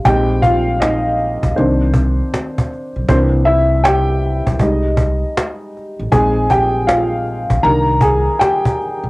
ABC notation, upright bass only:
X:1
M:4/4
L:1/16
Q:"Swing 16ths" 1/4=79
K:Cm
V:1 name="Upright bass" clef=bass
B,,,6- B,,, B,,, C,,4 z3 =B,,, | C,,6- C,, C,, C,,4 z3 =A,,, | B,,,6- B,,, B,,, C,,4 z3 =B,,, |]